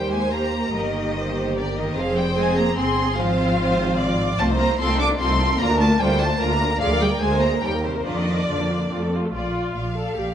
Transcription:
Already playing: D#2 G3 A#3 G4 C5 G5
0.12 G#3 G#5
0.32 A#3 G4 A#5
0.73 G1 D#3 A#3 G4 A#4 D#5
1.15 C5
1.56 D3 A#4 D5
1.76 D#3 D#5
1.95 F1 F3 C4 G#4 C5 F5
2.16 G3 G5
2.36 G#3 C4 G#4 G#5
2.56 A#3 A#5
2.77 G1 C4 G#4 C6
3.17 G#1 F3 C4 F4 C5 F5
3.59 C5
4.00 D5
4.38 C2 A3 C4 F4 C5 A5
4.49 A3 D#4
4.58 A#3 C4 F4 A#5
4.69 A3 D#4
4.79 C2 C4 F4 A4 C6
4.89 A3 D#4
4.99 C4 D4 F4 D6
5.09 A3 D#4
5.19 C2 C4 F4 A4 C6
5.29 A3 D#4
5.39 C4 F4
5.50 A3 D#4
5.59 D2 A#3 D4 F4 A#4 A#5
5.70 A#3 D4
5.80 A3 D4 F4 A5
5.90 A#3 D4
6.00 D2 G3 D4 F4 C5 G5
6.11 A#3 D4
6.20 A3 D4 F4 A5
6.30 A#3 D4
6.40 D2 A#3 D4 F4 A#4 A#5
6.49 A#3 D4
6.60 D4 F4
6.70 A#3 D4
6.80 D2 F3 G#3 G#4 D5 F5
6.91 A#3 A#4
7.00 G3 G#3 G#4 G5
7.11 A#3 A#4
7.20 D2 G#3 G#4 C5 G#5
7.32 A#3 A#4
7.41 G#3 A#3 G#4 A#5
7.52 A#3 A#4
7.62 D#2 G3 G4 A#4 G5
7.73 A#3 A#4
7.84 C3 G3 G4 C5
7.95 A#3 A#4
8.05 F2 D#3 D4 F4 D5 D#5
8.16 A#3 D4
8.27 D4 F4
8.38 A#3 D4
8.48 F2 D3 D4 F4 D5
8.59 A#3 D4
8.69 D4 F4
8.80 A#3 D4
8.90 F2 C4 F4
9.01 A3 A4
9.12 C4 F4
9.23 A3 A4
9.33 A#1 A#2 F4 D5
9.53 D5
9.74 A#1 A#2 D5 F5
9.95 A4 D5
10.16 A#1 A#2 G4 D5

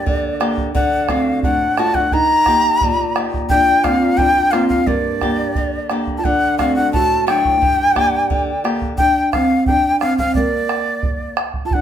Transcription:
Already playing: A#3 D4 G4 D5
0.06 D3, bombo low
0.40 A#3 D4 G4, bombo rim
0.58 bombo low
0.75 D3 D4 F#5, bombo low
1.09 A3 C4 D4 F#4 F5, bombo rim, bombo low
1.43 A2 D4 F#5, bombo low
1.77 A3 D4 F4 F#4 A5, bombo rim
1.94 D4 F#5, bombo low
2.12 D#3 D#4 A#5, bombo low
2.46 A#3 D#4 G4, bombo rim, bombo low
2.81 A#2, bombo low
3.16 A#3 D#4 G4, bombo rim
3.34 bombo low
3.49 A#2 D4 G5, bombo low
3.84 A#3 C4 D4 F4 F5, bombo rim, bombo low
4.17 F2 D4 G5, bombo low
4.51 A#3 C4 D4 F4 F5, bombo rim
4.69 C4 F5, bombo low
4.87 G2 A#3 D5, bombo low
5.21 A#3 D4 G4, bombo rim, bombo low
5.55 D3, bombo low
5.89 A#3 D4 G4, bombo rim
6.07 bombo low
6.18 F4 A5
6.24 D3 D4 F#5, bombo low
6.58 A3 C4 D4 F#4 F5, bombo rim, bombo low
6.76 D4 F#5
6.93 A2 F#4 A5, bombo low
7.27 F#3 A3 D4 G5, bombo rim
7.45 bombo low
7.62 G2, bombo low
7.95 A#3 D4 G4, bombo rim, bombo low
8.30 D3, bombo low
8.64 A#3 D4 G4, bombo rim
8.82 bombo low
8.98 D4 G5, bombo low
9.32 C4 F5, bombo rim, bombo low
9.66 D4 G5, bombo low
10.00 C4 F5, bombo rim
10.18 C4 F5, bombo low
10.35 A#3 D5, bombo low
10.69 bombo rim
11.03 bombo low
11.37 bombo rim
11.54 bombo low
11.65 F4 A5
11.71 D4 F#5, bombo low

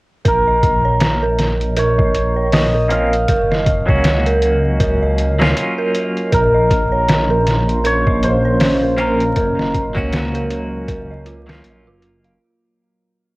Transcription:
0.24 A#1 A#4, kick, closed hi-hat
0.47 D#5
0.63 kick, closed hi-hat
0.85 C#5
1.00 snare, closed hi-hat
1.23 A#4
1.39 snare, closed hi-hat
1.61 closed hi-hat
1.77 A#4 C#5, closed hi-hat
1.98 D#5, kick
2.15 closed hi-hat
2.36 C#5
2.53 D#5, snare, open hi-hat
2.75 A#4
2.89 A#3 C4 C#4 F4 F5, closed hi-hat
3.13 closed hi-hat
3.28 F#1 A#4, kick, closed hi-hat
3.51 D#5, snare
3.66 kick, closed hi-hat
3.87 C#2 F#3 A#3 C#4 F#4 C#5, kick
4.04 snare, closed hi-hat
4.26 A#4, closed hi-hat
4.42 closed hi-hat
4.80 A#4, kick, closed hi-hat
5.03 D#5
5.18 closed hi-hat
5.39 F#3 A#3 C#4 F4 C#5, snare
5.57 closed hi-hat
5.78 A#4
5.95 closed hi-hat
6.17 closed hi-hat
6.32 A#1 A#3 C#4 A#4 F5 C6, kick, closed hi-hat
6.54 D#5
6.70 kick, closed hi-hat
6.92 C#5
7.08 snare, closed hi-hat
7.30 A#4
7.47 snare, closed hi-hat
7.69 closed hi-hat
7.84 A#4 C#5, closed hi-hat
8.07 D#5, kick
8.23 C5, closed hi-hat
8.45 C#5
8.60 snare, open hi-hat
8.83 A#4
8.98 A#3 C4 C#4 F4 A#4, closed hi-hat
9.20 closed hi-hat
9.36 F#1 F#3 A#4 C#5, kick, closed hi-hat
9.59 D#5, snare
9.74 kick, closed hi-hat
9.95 C#2 F#3 A#3 C#4 F#4 C#5, kick
10.13 snare, closed hi-hat
10.35 A#4, closed hi-hat
10.51 closed hi-hat
10.88 A#4, kick, closed hi-hat
11.11 D#5
11.26 F4, closed hi-hat
11.47 F#3 A#3 C#4 F4 A#4, snare
11.64 A#1, closed hi-hat
11.87 F#1 F4
12.02 closed hi-hat
12.24 F5, closed hi-hat

